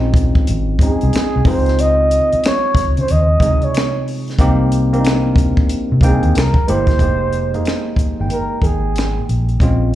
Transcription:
Already playing: A#1 G#3 C4 C#4 D#4 F4
0.14 kick, closed hi-hat
0.35 kick
0.47 G#1, closed hi-hat
0.79 G#3 C4 C#4 D#4 G#4, kick, closed hi-hat
1.01 C2, closed hi-hat
1.13 finger snap, muted fingered electric bass stroke, snare, closed hi-hat
1.36 C2
1.45 C#2 G#3 C4 D#4 F4 C5, kick, open hi-hat
1.66 snare, closed hi-hat
1.79 D#5, closed hi-hat
2.11 closed hi-hat
2.33 muted fingered electric bass stroke, closed hi-hat
2.44 C#5, finger snap, snare, closed hi-hat
2.75 C#2, kick, snare, closed hi-hat
2.97 C#3 C5, closed hi-hat
3.08 D#2 D#5, closed hi-hat
3.40 C#2 C3 G#3 D#4 G#4, kick, closed hi-hat
3.62 C#5, closed hi-hat
3.75 finger snap, snare, closed hi-hat
4.08 open hi-hat
4.28 snare, closed hi-hat
4.39 C2 A#3 C4 D#4 G4, kick, closed hi-hat
4.72 closed hi-hat
4.93 A#3 C4 D4 A#4, closed hi-hat
5.01 D#4
5.05 finger snap, snare, closed hi-hat
5.36 kick, closed hi-hat
5.57 kick
5.69 closed hi-hat
5.92 C3
6.01 C2 A#3 C4 D#4 G5, kick, closed hi-hat
6.05 G#4
6.23 D#2, closed hi-hat
6.35 C2 A#4, finger snap, snare, closed hi-hat
6.54 kick
6.68 G1 G#3 A#3 E4 G4 C5, closed hi-hat
6.87 kick, snare, closed hi-hat
6.99 F1 G#3 A#3 D#4 G4, kick, closed hi-hat
7.33 closed hi-hat
7.54 G#3 A#3 D#4 G#4, closed hi-hat
7.65 finger snap, snare, closed hi-hat
7.96 muted fingered electric bass stroke, kick, closed hi-hat
8.19 G1 G#3 A#3 D#4 G5
8.30 A#4, closed hi-hat
8.62 G#1 G#4, kick, closed hi-hat
8.96 finger snap, snare, closed hi-hat
9.29 A#1, closed hi-hat
9.49 closed hi-hat
9.60 A#1 G#3 C4 C#4 F4, kick, closed hi-hat

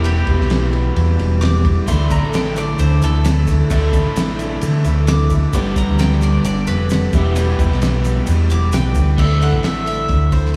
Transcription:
Already playing: E1 E2 B2 E3 G3 B3 E4 G4 B4
0.03 E2 B2 E3 G3 B3 G4, ride
0.25 E1 E3 G3 B3 E4 G4 B4, kick, ride
0.39 B1, snare
0.48 E3 G3 B3 G4, snare, ride
0.72 E3 G3 B3 G4, ride
0.96 E2, ride
1.17 E1 E3 G3 B3 G4, ride
1.41 D6, snare, ride
1.64 E3 G3 B3 G4, kick, ride
1.87 D2 D3 E3 A3 D4 E4 A4 D5 C6, kick, ride, shaker
2.08 A3 D4 E4 A4 D5 A#5, kick, ride, shaker
2.22 A1
2.32 D3 A3 D4 E4 G5, snare, ride, shaker
2.56 A3 D4 E4 D5, ride, shaker
2.79 D2 C5, ride, shaker
3.02 D2 D4 E4 A4, ride, shaker
3.06 A3
3.25 snare, ride, shaker
3.47 A3 D4 E4, kick, snare, ride, shaker
3.70 D2 D3 E3 A3 D4 E4 A4 D5, kick, ride, shaker
3.92 D2 D4 E4 A4 D5, kick, ride, shaker
3.96 A3
4.06 A1
4.16 D3 A3 D4 E4, snare, ride, shaker
4.39 A3 D4 E4, ride, shaker
4.61 D3, ride, shaker
4.84 D2 A3 D4 E4, ride, shaker
5.07 D6, snare, ride, shaker
5.30 A3 D4 E4, kick, ride, shaker
5.53 G1 G2 D3 G3 B3 D4 G4 B4 D5 D6, kick, ride, shaker
5.75 B3 D4 G4 B4 D5 A#5, kick, ride, shaker
5.80 G3
5.88 D2
5.99 G3 B3 D4 G4 G5, snare, ride, shaker
6.21 B3 D4 G4 D5, ride, shaker
6.26 G3
6.44 G1 D5, ride, shaker
6.67 F1 D4 G4 B4, ride, shaker
6.71 G3 B3
6.89 snare, ride, shaker
7.12 E1 E2 B2 G3 B3 E4 G4 B4 E5, kick, ride, shaker
7.17 E3
7.35 E2 B2 E3 G3 B3 G4, ride, shaker
7.58 E1 E3 G3 B3 G4 B4 E5, kick, ride, shaker
7.70 B1, snare
7.81 E3 G3 B3 G4, snare, ride, shaker
8.04 E3 G3 B3 G4, ride, shaker
8.27 E2, ride, shaker
8.49 E1 E3 G3 B3 G4 D6, ride, shaker
8.72 B1 B4 G5, snare, ride, shaker
8.95 D2 G3 B3 G4, kick, ride, shaker
8.99 E3
9.17 D2 D3 A3 D4 E4 A4 D5 E5, kick, crash
9.40 D4 E4 A4 D5 F#5, open hi-hat
9.44 A3
9.53 A1, kick
9.63 D3 A3 D4 E5, snare, open hi-hat
9.67 E4
9.86 D4 E4 E5, open hi-hat
9.91 A3
10.09 D2, kick, open hi-hat
10.31 D2 A3 D4 E4 C5, kick, open hi-hat
10.46 snare

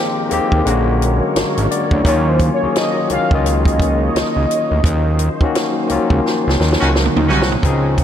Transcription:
Already playing: D#3 F3 G#3 A#3 C4 D#4 F4 G4 A#4 C5
0.29 D#2 D#3 G#3 A#3 C4 G4, closed hi-hat
0.52 D#2, kick
0.65 A#1 D3 F#3 G#3 A#3 C#4 A#4 C#5, closed hi-hat
0.69 F#4
1.02 closed hi-hat
1.35 G#1, snare, closed hi-hat
1.57 G#1 D4 A#4, closed hi-hat
1.71 F#4 D5, closed hi-hat
1.91 D2 E4 C#5, kick
2.04 D#2 D#3 F#3 A#3 C#4 C#5, kick, closed hi-hat
2.09 F4
2.29 C5
2.39 kick, closed hi-hat
2.54 C#5
2.60 C#2 D#3 F#3 A#3 C#4
2.65 G#4
2.76 D#5, snare, closed hi-hat
3.08 C#2 D#3 F#3 A#3 C#4, closed hi-hat
3.12 F4 F5
3.31 C#2 D#3 F#3 A#3 C#4 D#5, kick
3.35 F4
3.46 closed hi-hat
3.65 kick, closed hi-hat
3.80 kick, closed hi-hat
4.15 C#2, snare, closed hi-hat
4.36 C#2
4.51 closed hi-hat
4.71 D2
4.84 D#2 C5, kick, closed hi-hat
5.19 closed hi-hat
5.40 C#2 D#3 F#3 A#3 C#4, kick
5.45 F#4
5.55 snare, closed hi-hat
5.87 C#2 D#3 F3 A#3 C#4, closed hi-hat
5.92 F#3 F4
6.10 C#2, kick
6.26 snare
6.47 C#2, snare
6.60 D#2, snare
6.73 snare
6.80 C#2 D#3 C#4 F#4
6.96 snare
7.05 mid tom
7.17 D#2, mid tom
7.28 C2 D#3 C#4 F#4
7.42 snare
7.52 floor tom
7.62 C#2 F3 C4 C#4 D#4, kick, closed hi-hat
7.66 G#4
7.98 kick, closed hi-hat

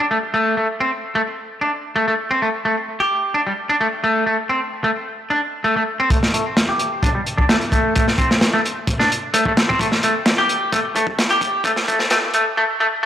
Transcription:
0.11 A3
0.34 A3
0.57 A3
0.80 C4
1.15 A3
1.61 D4
1.96 A3
2.08 A3
2.31 C4
2.42 A3
2.65 A3
3.00 G4
3.34 D4
3.47 G3
3.69 D4
3.81 A3
4.04 A3
4.26 A3
4.49 C4
4.84 A3
5.30 D4
5.64 A3
5.76 A3
6.00 C4
6.10 A3, kick, closed hi-hat
6.23 snare
6.34 A3, closed hi-hat
6.57 snare, closed hi-hat
6.69 G4
6.79 closed hi-hat
7.03 D4, kick, closed hi-hat
7.15 G3
7.26 closed hi-hat
7.38 D4, kick
7.49 A3, snare, closed hi-hat
7.61 closed hi-hat
7.72 A3, kick, closed hi-hat
7.96 A3, kick, closed hi-hat
8.08 snare
8.18 C4, kick, closed hi-hat
8.31 snare
8.41 snare, closed hi-hat
8.53 A3
8.65 closed hi-hat
8.87 kick, closed hi-hat
8.99 D4, snare
9.12 closed hi-hat
9.34 A3, closed hi-hat
9.45 A3, kick
9.57 snare, closed hi-hat
9.69 C4, kick
9.79 A3, kick, closed hi-hat
9.92 snare
10.03 A3, closed hi-hat
10.26 snare, closed hi-hat
10.38 G4
10.49 closed hi-hat
10.72 A3, kick, closed hi-hat
10.96 A3, closed hi-hat
11.07 kick
11.19 snare, closed hi-hat
11.30 G4, closed hi-hat
11.41 kick, closed hi-hat
11.64 A3, kick, closed hi-hat
11.76 snare
11.88 A3, kick, closed hi-hat
11.99 snare
12.10 A3, snare, closed hi-hat
12.34 A3, closed hi-hat
12.57 A3
12.80 A3

